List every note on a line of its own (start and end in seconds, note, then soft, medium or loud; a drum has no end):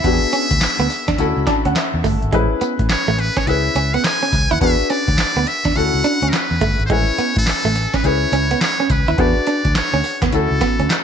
0.00 1.16 B3 medium
0.00 1.66 E5 loud
0.04 0.17 E2 loud
0.04 0.18 B3 medium
0.04 1.16 D4 medium
0.04 1.17 F#4 medium
0.04 0.13 G4 medium
0.04 kick loud
0.04 closed hi-hat medium
0.13 1.20 G#4 medium
0.33 0.47 C#4 medium
0.33 closed hi-hat medium
0.33 tambourine medium
0.51 0.58 D2 medium
0.51 muted clean electric guitar stroke soft
0.51 kick loud
0.51 closed hi-hat medium
0.61 snare loud
0.61 clap medium
0.61 closed hi-hat medium
0.61 tambourine loud
0.79 0.87 D2 medium
0.79 0.87 B3 medium
0.90 muted clean electric guitar stroke medium
0.90 open hi-hat medium
0.90 tambourine medium
1.08 1.16 E2 loud
1.08 1.16 D4 medium
1.08 kick loud
1.08 snare medium
1.08 closed hi-hat medium
1.18 1.31 D2 medium
1.18 2.30 C#4 medium
1.18 2.30 E4 medium
1.18 2.31 F#4 medium
1.18 2.31 A4 medium
1.18 muted clean electric guitar stroke soft
1.18 closed hi-hat medium
1.18 tambourine medium
1.37 1.44 C#2 medium
1.47 1.61 D4 medium
1.47 1.64 A5 medium
1.47 kick medium
1.47 snare medium
1.47 closed hi-hat medium
1.47 tambourine medium
1.65 1.73 D2 medium
1.65 1.73 C#4 medium
1.65 1.75 F#5 medium
1.65 closed hi-hat medium
1.76 2.29 E5 medium
1.76 snare loud
1.76 clap loud
1.76 closed hi-hat medium
1.76 tambourine medium
1.94 2.01 E2 loud
2.04 2.17 G1 medium
2.04 2.18 A3 medium
2.04 kick loud
2.04 open hi-hat medium
2.04 tambourine medium
2.22 2.30 G#1 medium
2.22 closed hi-hat soft
2.32 2.46 A1 loud
2.32 2.46 G#3 medium
2.32 3.44 C#4 medium
2.32 3.45 E4 medium
2.32 3.45 G#4 medium
2.32 3.46 B4 medium
2.32 kick loud
2.32 closed hi-hat medium
2.61 2.75 B3 medium
2.61 muted fingered electric bass stroke soft
2.61 closed hi-hat medium
2.61 tambourine medium
2.79 2.87 A2 loud
2.79 muted clean electric guitar stroke soft
2.79 kick loud
2.79 closed hi-hat medium
2.89 3.21 C#5 loud
2.89 snare loud
2.89 clap medium
2.89 closed hi-hat medium
2.89 tambourine medium
3.08 3.29 A1 medium
3.08 3.16 A3 medium
3.18 3.39 B4 loud
3.18 muted clean electric guitar stroke soft
3.18 closed hi-hat medium
3.18 tambourine medium
3.37 3.45 C#4 medium
3.37 3.49 C#5 loud
3.37 kick medium
3.37 snare medium
3.37 closed hi-hat medium
3.46 3.68 C#2 loud
3.46 4.59 C#4 medium
3.46 4.59 E4 medium
3.46 4.59 G#4 medium
3.46 4.60 B4 medium
3.46 3.96 E5 loud
3.46 muted clean electric guitar stroke soft
3.46 closed hi-hat medium
3.46 tambourine medium
3.75 3.96 C#2 medium
3.75 3.90 C#4 medium
3.75 closed hi-hat medium
3.75 tambourine medium
3.94 4.02 B3 medium
3.94 4.06 F#5 loud
3.94 closed hi-hat medium
4.04 4.53 G#5 loud
4.04 snare loud
4.04 clap loud
4.04 closed hi-hat medium
4.04 tambourine medium
4.23 4.30 C#4 medium
4.33 4.46 C#2 loud
4.33 muted clean electric guitar stroke soft
4.33 kick loud
4.33 closed hi-hat medium
4.33 tambourine medium
4.51 4.59 D#2 medium
4.51 4.59 E4 medium
4.51 4.61 F#5 loud
4.51 closed hi-hat soft
4.60 4.74 E2 loud
4.60 4.75 B3 medium
4.60 5.73 D4 medium
4.60 5.73 F#4 medium
4.60 5.74 G#4 medium
4.60 5.74 B4 medium
4.60 4.92 E5 loud
4.60 kick loud
4.60 closed hi-hat medium
4.90 5.04 C#4 medium
4.90 5.49 D5 loud
4.90 closed hi-hat medium
4.90 tambourine medium
5.08 5.16 D2 medium
5.08 muted clean electric guitar stroke soft
5.08 kick loud
5.08 closed hi-hat medium
5.18 snare loud
5.18 clap medium
5.18 closed hi-hat medium
5.18 tambourine loud
5.36 5.44 D2 medium
5.36 5.45 B3 medium
5.47 5.78 E5 loud
5.47 muted clean electric guitar stroke soft
5.47 closed hi-hat medium
5.47 tambourine medium
5.65 5.73 E2 loud
5.65 5.73 D4 medium
5.65 kick medium
5.65 snare medium
5.65 closed hi-hat medium
5.75 5.89 D2 loud
5.75 6.87 C#4 medium
5.75 6.88 E4 medium
5.75 6.88 F#4 medium
5.75 6.88 A4 medium
5.75 6.31 F#5 loud
5.75 muted clean electric guitar stroke soft
5.75 closed hi-hat medium
5.75 tambourine medium
5.94 6.01 C#2 medium
6.04 6.18 D4 medium
6.04 closed hi-hat medium
6.04 tambourine medium
6.22 6.30 D2 loud
6.22 6.30 C#4 medium
6.22 closed hi-hat medium
6.29 6.36 A#4 medium
6.29 snare loud
6.29 closed hi-hat medium
6.29 tambourine loud
6.34 6.85 B4 loud
6.34 clap medium
6.51 6.58 E2 medium
6.61 6.74 G1 medium
6.61 6.75 A3 medium
6.61 kick medium
6.61 closed hi-hat medium
6.61 tambourine medium
6.79 6.87 G#1 medium
6.79 closed hi-hat soft
6.86 7.03 A1 loud
6.86 7.04 G#3 medium
6.86 8.02 C#4 medium
6.86 6.93 C5 medium
6.86 kick loud
6.86 closed hi-hat medium
6.90 8.02 E4 medium
6.90 8.03 B4 medium
6.90 7.37 C#5 loud
6.90 8.02 G#5 medium
7.18 7.32 B3 medium
7.18 muted fingered electric bass stroke medium
7.18 closed hi-hat medium
7.18 tambourine medium
7.36 7.44 A2 loud
7.36 7.97 A4 loud
7.36 muted clean electric guitar stroke soft
7.36 kick loud
7.36 closed hi-hat medium
7.47 snare loud
7.47 clap medium
7.47 closed hi-hat medium
7.47 tambourine medium
7.65 7.85 A1 medium
7.65 7.73 A3 medium
7.76 muted clean electric guitar stroke soft
7.76 closed hi-hat medium
7.76 tambourine medium
7.94 8.02 C#4 medium
7.94 8.07 B4 medium
7.94 kick medium
7.94 snare medium
7.94 closed hi-hat medium
8.04 8.25 C#2 loud
8.04 9.16 C#4 medium
8.04 9.16 E4 medium
8.04 9.17 G#4 medium
8.04 9.17 B4 medium
8.04 8.62 C#5 loud
8.04 muted clean electric guitar stroke soft
8.04 closed hi-hat medium
8.04 tambourine medium
8.32 8.53 C#2 loud
8.32 8.47 C#4 medium
8.32 closed hi-hat medium
8.32 tambourine medium
8.51 8.59 B3 medium
8.51 closed hi-hat medium
8.61 8.93 C#5 loud
8.61 snare loud
8.61 clap medium
8.61 closed hi-hat medium
8.61 tambourine loud
8.80 8.88 C#4 medium
8.90 9.03 C#2 loud
8.90 9.21 B4 medium
8.90 muted clean electric guitar stroke soft
8.90 kick loud
8.90 closed hi-hat medium
8.90 tambourine medium
9.08 9.16 D#2 medium
9.08 9.16 E4 medium
9.08 closed hi-hat soft
9.17 9.31 E2 loud
9.17 9.32 B3 medium
9.17 10.30 D4 medium
9.17 10.30 F#4 medium
9.17 10.31 G#4 medium
9.17 10.31 B4 medium
9.17 9.76 D5 loud
9.17 kick loud
9.17 closed hi-hat medium
9.46 9.61 D4 medium
9.46 closed hi-hat medium
9.46 tambourine medium
9.65 9.73 D2 medium
9.65 muted clean electric guitar stroke soft
9.65 kick loud
9.65 closed hi-hat medium
9.75 10.20 C#5 medium
9.75 snare loud
9.75 clap medium
9.75 closed hi-hat medium
9.75 tambourine medium
9.93 10.01 D2 medium
9.93 10.02 C#4 medium
10.04 muted clean electric guitar stroke medium
10.04 open hi-hat medium
10.04 tambourine medium
10.22 10.30 E2 loud
10.22 10.30 B3 medium
10.22 kick medium
10.22 snare medium
10.22 closed hi-hat medium
10.32 10.46 D2 loud
10.32 11.04 C#4 medium
10.32 11.04 E4 medium
10.32 11.04 F#4 medium
10.32 11.04 A4 medium
10.32 muted clean electric guitar stroke soft
10.32 closed hi-hat medium
10.32 tambourine medium
10.51 10.58 C#2 loud
10.61 10.75 B3 medium
10.61 kick medium
10.61 snare medium
10.61 closed hi-hat medium
10.61 tambourine medium
10.79 10.87 D2 loud
10.79 10.87 C#4 medium
10.79 closed hi-hat medium
10.90 snare loud
10.90 clap loud
10.90 closed hi-hat medium
10.90 tambourine loud